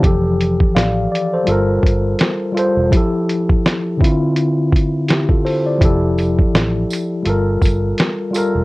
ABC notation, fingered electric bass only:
X:1
M:4/4
L:1/16
Q:"Swing 16ths" 1/4=83
K:F
V:1 name="Fingered electric bass" clef=bass
F,,,4 A,,,2 z2 G,,,2 G,,,2 z3 E,,, | z16 | F,,,4 A,,,2 z2 G,,,2 G,,,2 z3 E,,, |]